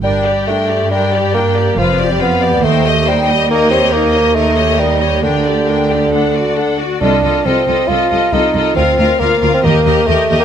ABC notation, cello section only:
X:1
M:4/4
L:1/8
Q:1/4=137
K:Gm
V:1 name="Cello section" clef=bass
G,,8 | F,,4 E,,4- | E,,8 | D,,6- D,, z |
[K:Fmix] C,, C,, C,, C,, C,, C,, C,, C,, | D,, D,, D,, D,, E,, E,, E,, E,, |]